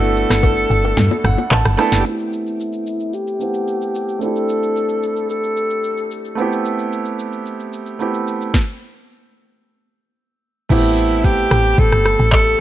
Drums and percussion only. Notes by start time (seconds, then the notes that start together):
0.03 shaker
0.17 shaker
0.30 cross-stick, snare, shaker
0.43 kick, high bongo, shaker
0.57 shaker
0.71 shaker
0.84 high bongo, shaker
0.97 snare, low conga, shaker
1.11 low bongo, shaker
1.24 cross-stick, low conga, shaker
1.38 low bongo, shaker
1.51 clap, high bongo, shaker
1.65 cross-stick, shaker
1.79 cross-stick, open hi-hat, shaker
1.92 snare, shaker
2.05 shaker
2.20 shaker
2.33 shaker
2.47 shaker
2.60 shaker
2.73 shaker
2.87 shaker
3.00 shaker
3.14 shaker
3.27 shaker
3.41 shaker
3.54 shaker
3.68 shaker
3.82 shaker
3.95 shaker
4.09 shaker
4.22 shaker
4.36 shaker
4.49 shaker
4.63 shaker
4.76 shaker
4.89 shaker
5.03 shaker
5.16 shaker
5.30 shaker
5.44 shaker
5.57 shaker
5.70 shaker
5.84 shaker
5.98 shaker
6.11 shaker
6.25 shaker
6.38 shaker
6.52 shaker
6.65 shaker
6.79 shaker
6.93 shaker
7.05 shaker
7.19 shaker
7.33 shaker
7.46 shaker
7.60 shaker
7.73 shaker
7.86 shaker
8.00 shaker
8.14 shaker
8.28 shaker
8.41 shaker
8.54 kick, snare
10.70 kick, crash, shaker
10.84 shaker
10.98 shaker
11.12 shaker
11.24 kick, shaker
11.38 shaker
11.51 cross-stick, shaker
11.65 shaker
11.78 kick, shaker
11.92 cross-stick, shaker
12.05 cross-stick, shaker
12.19 shaker
12.32 kick, clap, shaker
12.46 shaker